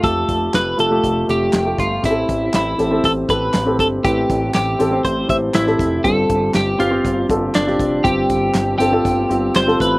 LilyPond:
<<
  \new Staff \with { instrumentName = "Clean electric guitar" } { \time 4/4 \key a \minor \tempo 4 = 120 a'4 b'8 a'4 g'4 f'8 | e'4 e'4 a'8 b'4 a'8 | g'4 g'4 c''8 e''8 e'4 | a'4 g'8 f'4 r8 d'4 |
g'4. g'4. c''8 b'8 | }
  \new Staff \with { instrumentName = "Upright piano" } { \time 4/4 \key a \minor <a f' g'>4~ <a f' g'>16 r16 <a f' g'>16 <a f' g'>8 r16 <a f' g'>8 r16 <a f' g'>8 r16 | <c' g' gis' a'>4~ <c' g' gis' a'>16 r16 <c' g' a'>16 <c' g' a'>8 r16 <c' g' a'>8 r16 <c' g' a'>8 r16 | <c' g' b'>4~ <c' g' b'>16 r16 <c' g' a'>16 <c' g' c''>8 r16 <c' g' c''>8 r16 <c' g' a'>8 r16 | <c' f' g'>4~ <c' f' g'>16 r16 <c' f' g'>16 <c' f' g'>8 r16 <c' f' a'>8 r16 <c' f' g'>8 r16 |
<c' f' g'>4~ <c' f' g'>16 r16 <c' f' a'>16 <c' f' a'>8 r16 <c' f' g'>8 r16 <c' f' a'>8 r16 | }
  \new Staff \with { instrumentName = "Upright piano" } { \clef bass \time 4/4 \key a \minor r1 | a,4. r2 r8 | a,4. r2 r8 | g,4. r2 r8 |
g,4. r2 r8 | }
  \new Staff \with { instrumentName = "Analog synth bass" } { \clef bass \time 4/4 \key a \minor f,,8 f,,8 f,,8 f,,8 f,,8 f,,8 f,,8 g,,8 | a,,8 a,,8 a,,8 a,,8 a,,8 a,,8 a,,8 g,,8 | a,,8 a,,8 a,,8 a,,8 a,,8 a,,8 a,,8 f,,8 | g,,8 g,,8 g,,8 g,,8 g,,8 g,,8 g,,8 f,,8 |
g,,8 g,,8 g,,8 g,,8 g,,8 g,,8 g,,8 a,,8 | }
  \new DrumStaff \with { instrumentName = "Drums" } \drummode { \time 4/4 <hh bd>8 <hh bd>8 <hc hh sn>8 hh8 <hh bd>8 hh8 <hc hh sn>8 <hh bd>8 | <hh bd>8 <hh bd>8 <hc hh sn>8 hh8 <hh bd>8 <hh bd>8 <hc hh sn>8 <hh bd>8 | <hh bd>8 <hh bd>8 <hc hh sn>8 hh8 <hh bd>8 <hh bd>8 <hc hh sn>16 sn16 <hh bd>8 | <hh bd>8 <hh bd>8 <hc hh sn>8 hh8 <hh bd>8 <hh bd>8 <hc hh sn>16 sn16 <hh bd>8 |
<hh bd>8 <hh bd>8 <hc hh sn>8 hh8 <hh bd>8 hh8 <hc hh sn>16 sn16 <hh bd>8 | }
>>